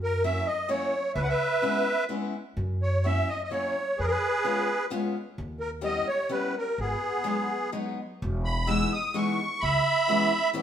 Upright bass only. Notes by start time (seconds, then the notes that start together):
Already playing: F#2
1.15 C#2
2.57 F#2
3.99 F2
5.38 D#2
6.78 G#1
8.22 E1
9.63 C#2